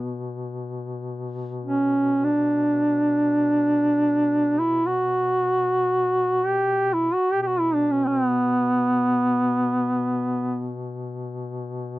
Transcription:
Already playing: B2 B3
1.64 C#4
2.24 D4
4.59 E4
4.87 F#4
6.44 G4
6.94 E4
7.14 F#4
7.31 B2 G4
7.43 G4
7.47 F#4
7.60 E4
7.74 D4
7.91 C#4
8.07 C4
8.26 B3

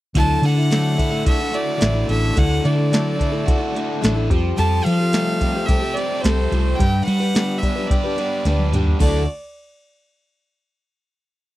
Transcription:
0.14 D2 D3 F#3 A3 D4 E4 A4 A5, kick, closed hi-hat
0.42 D3 A3 D4 E4 A4 F#5, closed hi-hat
0.56 A3 D4 E4 A4
0.70 D3 F#3 A3 D4 E4 A4, snare, closed hi-hat
0.96 A3 D4 E4 A4, kick, closed hi-hat
1.11 A3 D4 E4 A4
1.24 A3 D4 E4 F#4 A4 E5, kick, closed hi-hat
1.38 A3 D4 E4 A4
1.52 A3 D4 E4 A4 D5, closed hi-hat
1.77 D3 F#3 A3 D4 E4 A4, closed hi-hat
1.82 A1, snare
1.92 D4 E4 A4
1.96 A3
2.07 A1 D3 A3 D4 E4 E5, closed hi-hat
2.11 A4
2.24 snare
2.36 D2 D3 F#3 A3 D4 E4 A4 F#5, kick, closed hi-hat
2.62 D3 A3 D4 E4 A4 D5, closed hi-hat
2.75 A3 D4 E4 A4
2.91 D3 F#3 A3 D4 E4 A4, snare, closed hi-hat
3.15 A3 D4 E4 A4
3.20 kick, closed hi-hat
3.32 A3 D4 E4 A4
3.44 A3 D4 E4 F#4 A4, kick, closed hi-hat
3.58 A3 D4 E4 A4
3.72 A3 D4 E4
3.76 A4, closed hi-hat
4.02 A1 D3 F#3 A3 D4 E4 A4, snare, closed hi-hat
4.14 A3 D4 E4 A4
4.29 F2 F3 G3 C4 G4 A4, kick, closed hi-hat
4.56 F2 F3 G3 C4 G4 A4 A5, closed hi-hat
4.83 F3 G3 C4 G4 A4 F5, closed hi-hat
4.99 C4 G4 A4
5.13 F3 G3 A3 C4 G4 A4, snare, closed hi-hat
5.41 G3 C4 G4 A4, kick, closed hi-hat
5.55 C4 G4 A4
5.66 G3 C4 E5, kick, closed hi-hat
5.70 G4 A4
5.80 C4 G4 A4
5.94 G3 A3 C4 G4 D5, closed hi-hat
5.98 A4
6.22 C2 F3 G3 C4 G4 C5, snare, closed hi-hat
6.26 A4
6.51 C2 F3 G3 C4 G4 A4, closed hi-hat
6.76 G2 G3 D4 G4 G5, kick
6.80 B4, closed hi-hat
7.03 G3 D4 F#5
7.07 G3 G4 B4, closed hi-hat
7.20 D4 G4 B4
7.34 G3 B3 D4 G4 B4, snare, closed hi-hat
7.58 G3 D4 E5
7.63 G4 B4, kick, closed hi-hat
7.76 D4 G4 B4
7.87 G3 D4 D5, kick
7.91 G4 B4, closed hi-hat
8.04 D4 G4 B4
8.17 G3 B3 D4 G4, closed hi-hat
8.21 B4
8.45 D2 G3 D4 G4 B4, snare, closed hi-hat
8.59 high tom
8.72 D#2 G3 D4 G4 B4, closed hi-hat, mid tom
8.87 floor tom
8.99 D2 D3 F#3 A3 D4 E4 F#4 A4 D5, kick, crash

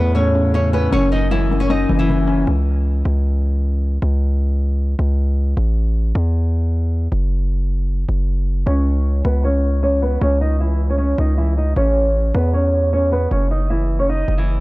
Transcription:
Already playing: E2 A2 B3 B4
0.15 A2 C#4 C#5
0.35 C#3
0.54 C#3 C#4 C#5
0.73 B3 C#4 B4
0.92 F#1 F#2 C#4 C#5
1.12 D#4 D#5
1.31 F#2 E3 E4
1.51 F#2
1.60 C#4 C#5
1.70 F#2 D#4 D#5
1.89 F#1 E3
1.99 E3 E4
2.09 E3
2.27 C#4
2.47 C#2
3.05 C#2
4.02 C#2
4.99 C#2
5.57 A1
6.15 E2
7.12 F#1
8.09 F#1
8.66 C#2 C#4 C#5
9.25 C#2 B3 B4
9.44 C#4 C#5
9.83 C#4 C#5
10.02 B3 B4
10.21 C#2 C#4 C#5
10.41 D#4 D#5
10.60 E3 E4
10.90 C#4 C#5
10.98 C#4 C#5
11.18 C#2 D#4 D#5
11.38 E3 E4
11.57 D#4 D#5
11.76 A1 C#4 C#5
12.35 E2 B3 B4
12.53 C#4 C#5
12.93 C#4 C#5
13.12 B3 B4
13.31 F#1 C#4 C#5
13.51 D#4 D#5
13.70 E3 E4
13.99 C#4 C#5
14.09 D#4 D#5
14.28 F#1
14.38 E3 E4

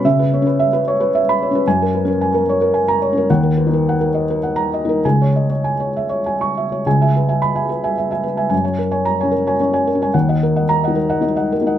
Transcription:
0.05 C#3 E5
0.19 B4
0.34 C#5
0.42 C#4
0.47 B4
0.59 E5
0.73 B4
0.88 C#5
1.00 B4
1.15 E5
1.29 B5
1.43 C#5
1.51 C#4
1.55 B4
1.67 F#2 G#5
1.82 A#4
1.94 B4
2.05 C#4 A#4
2.21 G#5
2.34 A#4
2.49 C#5
2.61 A#4
2.74 G#5
2.88 A#5
3.02 C#5
3.13 C#4
3.17 A#4
3.30 D#2 F#5
3.43 A#4
3.57 B4
3.67 D#4
3.73 A#4
3.89 F#5
4.01 A#4
4.14 D#5
4.30 A#4
4.43 F#5
4.56 A#5
4.74 D#5
4.85 D#4
4.89 A#4
5.05 C#2 G#5
5.22 C#5
5.36 D#5
5.50 C#5
5.64 G#5
5.80 C#5
5.97 E5
6.09 C#5
6.26 G#5
6.41 C#6
6.57 E5
6.72 C#5
6.86 C#2 G#5
7.01 E5 G#5
7.16 B4
7.28 E5 G#5
7.42 B5
7.55 E5 G#5
7.69 B4
7.84 E5 G#5
7.98 E5
8.11 E5 G#5
8.23 B4
8.37 E5 G#5
8.49 F#2 G#5
8.64 C#5 G#5
8.79 A#4
8.91 C#5 G#5
9.05 A#5
9.20 C#4 C#5 G#5
9.31 A#4
9.47 C#5 G#5
9.60 C#4 C#5
9.73 C#5 G#5
9.87 A#4
9.95 C#4
10.02 C#5 G#5
10.14 D#2 F#5
10.29 D#5 F#5
10.43 A#4
10.56 D#5 F#5
10.69 A#5
10.84 D#5 F#5
10.88 D#4
10.96 A#4
11.09 D#5 F#5
11.21 D#4 D#5
11.36 D#5 F#5
11.52 A#4
11.62 D#4
11.66 D#5 F#5

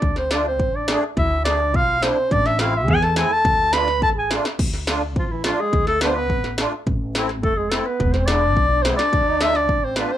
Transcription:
Already playing: D4 D5
0.02 D2, kick
0.16 C4 C5, snare
0.31 A3 D4 F4 D5, snare
0.48 C4 C5
0.59 A1, kick
0.75 D4 D5
0.88 A3 D4 G#4, snare
1.17 D2 E4 E5, kick
1.41 D4 E4 D5
1.45 A3 D4 G#4, snare
1.74 B1 F4 F5, kick
2.01 A3 C4 D4 E4 C5, snare
2.30 A1 D4 D5, kick
2.46 E5, snare
2.59 A3 C4 E4 F4 F5, snare
2.77 E5
2.86 E2 G#4, kick
2.91 G#5
3.02 A4 A5, snare
3.16 A3 C4 E4 G#4 G#5, snare
3.31 A4 A5
3.45 D2, kick
3.73 A3 D4 F4 B4 B5, snare
3.88 snare
4.02 A1 A4 A5, kick
4.15 G#4 G#5
4.31 A3 D4 F4, snare
4.45 snare
4.59 D2, kick, crash
4.74 snare
4.87 A3 D4 F4, snare
5.16 A1 F3 F4, kick
5.26 F4
5.30 E3 E4
5.43 F3 A3 D4 F4, snare
5.59 G#3 G#4
5.73 D2, kick
5.87 A3 A4, snare
6.01 A3 B3 D4 F4 B4, snare
6.07 C5
6.14 B3 B4
6.30 A1, kick
6.44 snare
6.58 A3 D4 F4, snare
6.86 A1, kick
7.15 A3 C4 E4, snare
7.29 snare
7.43 F1 A3 A4, kick
7.56 G#3 G#4
7.70 A3 C4 E4 A4, snare
7.86 B3 B4
8.00 E1, kick
8.12 C5, snare
8.17 C4
8.26 G#3 B3 E4 D5, snare
8.31 D4
8.57 B1, kick
8.69 D4 E4
8.82 C4 C5, snare
8.86 G#3 B3 E4
8.97 D4 D5, snare
9.13 D2, kick
9.41 A3 D4 F4 E5, snare
9.55 D5, snare
9.69 A1, kick
9.84 C4 C5
9.96 A3 B3 D4 F4 B4, snare
10.11 C4 C5

